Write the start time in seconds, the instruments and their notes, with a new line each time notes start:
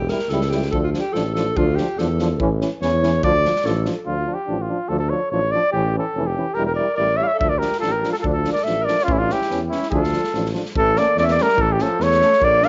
Already playing: tuba E1, alto saxophone G4
0.09 euphonium G3, trombone E4, alto saxophone A#4, snare
0.19 snare
0.29 tuba C#2, euphonium G3, trombone E4, alto saxophone A4, snare
0.41 snare
0.50 euphonium G3, trombone E4, alto saxophone G4, snare
0.62 snare
0.71 tuba D2, euphonium F3, trombone D4, alto saxophone A4, kick
0.84 alto saxophone F4
0.93 euphonium F3, trombone D4, snare
0.99 alto saxophone G4
1.13 tuba A1, euphonium F3, trombone D4, alto saxophone A4, snare
1.34 euphonium F3, trombone D4, alto saxophone A4, snare
1.57 tuba D2, euphonium F3, trombone D4, alto saxophone F4, kick
1.76 euphonium F3, trombone D4, alto saxophone G4, snare
1.98 tuba E2, euphonium F3, trombone D4, alto saxophone A4, snare
2.19 euphonium F3, trombone D4, snare
2.40 tuba A1, euphonium E3, trombone C#4, kick
2.61 euphonium E3, trombone C#4, snare
2.82 tuba E2, euphonium E3, trombone C#4, alto saxophone C#5, snare
3.02 euphonium E3, trombone C#4, snare
3.23 tuba D2, euphonium F3, trombone D4, alto saxophone D5, kick
3.44 euphonium F3, trombone D4, snare
3.56 snare
3.65 tuba A1, euphonium F3, trombone D4, alto saxophone A4, snare
3.84 euphonium F3, trombone D4, snare
4.06 tuba D2, euphonium F3, trombone D4, flugelhorn F4
4.27 euphonium F3, trombone D4
4.34 flugelhorn G4
4.47 tuba A1, euphonium F3, trombone D4
4.62 flugelhorn F4
4.68 euphonium F3, trombone D4
4.89 tuba D2, euphonium F3, trombone D4, flugelhorn A4
4.99 flugelhorn A4
5.10 euphonium F3, trombone D4, flugelhorn C#5
5.31 tuba A1, euphonium F3, trombone D4, flugelhorn C#5
5.51 euphonium F3, trombone D4, flugelhorn D5
5.72 tuba A1, euphonium E3, trombone C#4, flugelhorn G4
5.96 euphonium E3, trombone C#4, flugelhorn A4
6.15 tuba F1, euphonium E3, trombone C#4
6.27 flugelhorn G4
6.36 euphonium E3, trombone C#4
6.53 tuba E1, alto saxophone G4, flugelhorn A#4
6.57 euphonium G3, trombone E4
6.65 alto saxophone G4, flugelhorn A#4
6.73 alto saxophone A#4, flugelhorn D5
6.79 euphonium G3, trombone E4
6.94 tuba A1, alto saxophone A#4, flugelhorn D5
6.98 euphonium G3, trombone E4
7.16 euphonium G3, trombone E4, alto saxophone C#5, flugelhorn E5
7.22 alto saxophone C#5 D5, flugelhorn F5
7.27 flugelhorn E5
7.34 alto saxophone A4
7.39 tuba D2, euphonium F3, trombone D4, flugelhorn E5, kick
7.48 alto saxophone A#4, flugelhorn D5
7.58 trombone D4, alto saxophone G4, flugelhorn A#4
7.62 euphonium F3, snare
7.72 snare
7.78 tuba A1, alto saxophone F4, flugelhorn A4
7.82 euphonium F3, trombone D4, snare
7.89 alto saxophone G4, flugelhorn A#4
8.03 euphonium F3, trombone D4, snare
8.09 alto saxophone F4, flugelhorn A4
8.14 snare
8.19 alto saxophone F4, flugelhorn A4
8.24 tuba D2, euphonium F3, trombone D4, kick
8.30 alto saxophone F4, flugelhorn A4
8.44 euphonium F3, trombone D4, snare
8.52 alto saxophone A#4, flugelhorn D5, snare
8.62 alto saxophone A4, flugelhorn E5
8.66 tuba A1, euphonium F3, trombone D4, snare
8.82 alto saxophone A#4, flugelhorn D5
8.87 euphonium F3, trombone D4, snare
8.99 snare
9.04 alto saxophone C#4, flugelhorn F4
9.08 tuba A1, euphonium E3, trombone C#4, kick
9.13 alto saxophone C#4, flugelhorn E4
9.18 alto saxophone D4, flugelhorn F4
9.29 euphonium E3, trombone C#4, flugelhorn G4, snare
9.33 alto saxophone E4
9.41 snare
9.49 tuba E2, euphonium E3, trombone C#4, snare
9.69 euphonium E3, alto saxophone C#4, trombone C#4, flugelhorn E4, snare
9.82 snare
9.88 tuba D2, alto saxophone F4, flugelhorn A4, kick
9.92 euphonium F3, trombone D4
10.04 snare
10.13 euphonium F3, trombone D4, snare
10.24 snare
10.33 tuba A1, euphonium F3, trombone D4, snare
10.46 snare
10.54 euphonium F3, trombone D4, snare
10.65 snare
10.75 tuba A1, alto saxophone E3, flugelhorn A4, kick
10.96 euphonium A3, alto saxophone A#3, trombone C#4, flugelhorn D5, snare
11.16 tuba E2, alto saxophone A3 C#4, flugelhorn D5, snare
11.22 flugelhorn E5
11.28 alto saxophone A#3, flugelhorn D5, snare
11.38 alto saxophone G3, euphonium A3, trombone C#4, snare
11.42 flugelhorn A#4
11.48 snare
11.58 tuba A1, alto saxophone E3, flugelhorn A4, kick
11.69 alto saxophone E3, flugelhorn G4
11.78 alto saxophone F3, euphonium A3, trombone C#4, flugelhorn A4, snare
11.99 tuba E2, alto saxophone A3, flugelhorn C#5, snare
12.11 snare
12.21 euphonium A3, trombone C#4, snare
12.33 snare
12.40 tuba A#1, alto saxophone A#3, flugelhorn D5, kick
12.62 euphonium A#3, trombone D4, alto saxophone D4, flugelhorn F5, snare